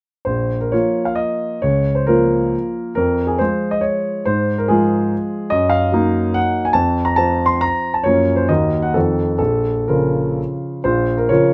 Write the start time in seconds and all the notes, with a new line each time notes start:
0.25 A#1 C5
0.61 A#4
0.72 F3 A#3 F4 C#5
1.05 F5
1.15 D#5
1.62 C#2 C#5
1.95 C5
2.07 F3 A#3 F4 A#4
2.95 F2 A#4
3.27 G#4
3.39 F3 G#3 F4 C5
3.71 D#5
3.81 C#5
4.25 G#2 C5
4.58 A#4
4.68 F3 G#3 F4 G#4
5.50 F#2 D#5
5.70 F5
5.92 F#3 A#3 D#4
6.34 F#5
6.65 G#5
6.73 F2 A5
7.05 A#5
7.16 F3 C4 F4 A5
7.46 C6
7.61 A#5
7.94 A5
8.04 F#2 F3 A#3 C#4 C#5
8.36 C5
8.49 D#2 D#3 A#3 F#4 D#5
8.82 F#5
8.94 F2 D#3 F3 F4 A4
9.38 A#1 A4
9.88 C#3 F3 F4 A#4
10.84 A#1 F4 C5
11.17 A#4
11.29 C#3 F3 F4 A#4 C#5